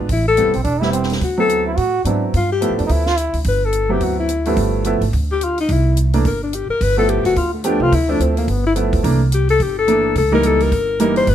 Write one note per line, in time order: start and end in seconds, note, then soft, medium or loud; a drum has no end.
0.09 0.44 A1 medium
0.09 0.26 E4 medium
0.09 kick soft
0.09 open hi-hat soft
0.28 0.53 A4 loud
0.37 0.53 G3 medium
0.37 0.53 B3 soft
0.37 0.53 C4 soft
0.37 0.53 E4 medium
0.37 closed hi-hat soft
0.46 0.55 C2 soft
0.54 0.64 A#1 medium
0.54 0.63 C4 medium
0.54 open hi-hat soft
0.64 1.18 E1 medium
0.64 0.82 D4 medium
0.64 kick soft
0.64 open hi-hat soft
0.81 1.19 G3 medium
0.81 1.19 B3 soft
0.81 1.19 C4 medium
0.81 0.93 E4 medium
0.81 1.19 E4 medium
0.81 snare soft
0.93 1.14 C4 medium
0.93 closed hi-hat soft
1.03 snare soft
1.10 snare soft
1.10 open hi-hat soft
1.21 1.74 D2 medium
1.21 1.38 F#4 medium
1.21 kick soft
1.21 open hi-hat soft
1.38 1.75 F#3 medium
1.38 1.75 B3 soft
1.38 1.75 C4 medium
1.38 1.75 E4 medium
1.38 1.65 A4 medium
1.49 closed hi-hat soft
1.66 1.78 E4 medium
1.76 2.03 A2 medium
1.76 2.04 F#4 medium
1.76 kick soft
1.76 open hi-hat soft
2.05 2.31 G#2 medium
2.05 2.34 F#3 soft
2.05 2.34 B3 soft
2.05 2.34 C4 soft
2.05 2.26 D4 medium
2.05 2.34 E4 soft
2.05 closed hi-hat soft
2.34 2.68 G2 medium
2.34 2.50 F4 medium
2.34 kick soft
2.34 open hi-hat soft
2.52 2.77 G4 medium
2.61 3.02 F3 medium
2.61 3.03 A3 soft
2.61 3.03 B3 medium
2.61 3.03 E4 medium
2.61 closed hi-hat soft
2.70 2.79 A2 soft
2.78 2.88 F2 medium
2.78 2.86 D4 medium
2.78 open hi-hat soft
2.86 3.31 D2 medium
2.86 2.90 D#4 medium
2.86 3.08 E4 medium
2.86 kick soft
2.86 open hi-hat soft
3.06 3.18 F4 medium
3.06 snare soft
3.16 3.39 E4 medium
3.16 closed hi-hat soft
3.33 3.44 D2 medium
3.33 open hi-hat soft
3.44 3.98 G1 medium
3.44 3.66 B4 medium
3.44 kick soft
3.44 open hi-hat soft
3.65 3.94 A4 medium
3.73 closed hi-hat soft
3.89 4.27 F#3 medium
3.89 4.27 B3 medium
3.89 4.27 C4 soft
3.89 4.27 E4 medium
3.89 4.05 G4 medium
4.00 4.54 D2 medium
4.00 4.19 F#4 medium
4.00 kick soft
4.00 open hi-hat soft
4.19 4.50 E4 medium
4.29 closed hi-hat soft
4.45 4.83 G2 medium
4.45 4.83 F3 medium
4.45 4.83 A3 medium
4.45 4.83 B3 medium
4.45 4.84 E4 medium
4.45 open hi-hat soft
4.56 4.98 G1 medium
4.56 kick soft
4.56 open hi-hat soft
4.84 5.00 F3 medium
4.84 5.01 A3 medium
4.84 5.01 B3 medium
4.84 5.01 E4 medium
4.84 closed hi-hat soft
5.01 5.12 G#1 medium
5.01 open hi-hat soft
5.13 5.66 D2 medium
5.13 kick soft
5.13 open hi-hat soft
5.32 5.45 G4 medium
5.41 5.59 F4 medium
5.41 closed hi-hat medium
5.58 5.73 D#4 medium
5.58 open hi-hat soft
5.69 6.22 C2 medium
5.69 5.98 E4 medium
5.69 kick soft
5.69 open hi-hat soft
5.97 closed hi-hat soft
6.13 6.24 E3 medium
6.13 6.24 A3 soft
6.13 6.24 A#3 soft
6.13 6.24 D4 medium
6.13 open hi-hat soft
6.25 6.66 G1 medium
6.25 6.41 A#4 medium
6.25 kick soft
6.25 open hi-hat soft
6.43 6.56 D4 medium
6.53 6.70 G4 medium
6.53 closed hi-hat soft
6.69 6.84 A#4 medium
6.69 muted upright bass stroke soft
6.81 7.22 G1 medium
6.81 6.98 B4 medium
6.81 kick soft
6.81 open hi-hat soft
6.97 7.34 F3 medium
6.97 7.34 A3 medium
6.97 7.34 B3 medium
6.97 7.35 E4 medium
6.97 7.11 A4 medium
7.09 7.25 G4 medium
7.09 closed hi-hat medium
7.25 7.35 F#1 medium
7.25 7.39 F#4 medium
7.25 open hi-hat soft
7.36 7.78 D2 medium
7.36 7.53 F4 medium
7.36 kick soft
7.36 open hi-hat soft
7.54 7.68 A3 soft
7.64 7.92 F3 medium
7.64 7.92 A3 medium
7.64 7.93 B3 soft
7.64 7.84 D4 medium
7.64 7.92 G4 medium
7.64 closed hi-hat soft
7.80 7.91 C2 medium
7.80 7.96 F4 medium
7.92 8.18 D2 medium
7.92 8.11 E4 medium
7.92 kick soft
7.92 open hi-hat soft
8.09 8.46 F3 medium
8.09 8.46 A3 soft
8.09 8.46 C4 soft
8.09 8.23 D4 medium
8.09 8.46 E4 medium
8.19 8.46 D2 medium
8.19 8.37 C4 medium
8.19 closed hi-hat soft
8.37 8.52 A#3 medium
8.37 open hi-hat soft
8.48 9.01 G1 medium
8.48 8.66 B3 medium
8.48 kick soft
8.48 open hi-hat soft
8.66 8.73 E4 medium
8.75 9.04 F3 medium
8.75 9.02 A3 medium
8.75 9.04 B3 medium
8.75 9.04 E4 medium
8.75 closed hi-hat soft
8.93 kick medium
8.93 open hi-hat soft
9.03 9.57 C2 medium
9.03 9.19 E3 medium
9.03 9.19 A3 soft
9.03 9.19 A#3 medium
9.03 9.19 D4 medium
9.03 kick soft
9.03 open hi-hat medium
9.32 9.49 G4 medium
9.32 closed hi-hat soft
9.49 9.63 A4 medium
9.49 open hi-hat soft
9.59 10.13 G1 medium
9.59 9.78 G4 medium
9.59 kick soft
9.59 open hi-hat soft
9.78 10.14 A4 medium
9.87 10.15 E3 medium
9.87 10.16 A3 soft
9.87 10.16 A#3 soft
9.87 10.16 D4 medium
9.87 closed hi-hat soft
10.15 10.68 C#2 medium
10.15 10.32 A4 medium
10.15 kick soft
10.15 open hi-hat soft
10.31 10.69 E3 medium
10.31 10.69 G3 medium
10.31 10.69 A#3 medium
10.31 10.69 D#4 medium
10.31 10.48 A#4 medium
10.43 10.64 A4 medium
10.43 closed hi-hat soft
10.60 11.00 A#4 medium
10.60 open hi-hat soft
10.72 11.24 G1 medium
10.72 kick soft
10.72 open hi-hat soft
10.99 11.27 E3 medium
10.99 11.27 G3 medium
10.99 11.28 A#3 medium
10.99 11.28 D#4 medium
10.99 11.16 A#4 medium
10.99 closed hi-hat soft
11.16 11.31 C5 medium
11.16 open hi-hat soft
11.27 11.35 G1 medium
11.27 11.35 B4 medium
11.27 kick soft
11.27 open hi-hat soft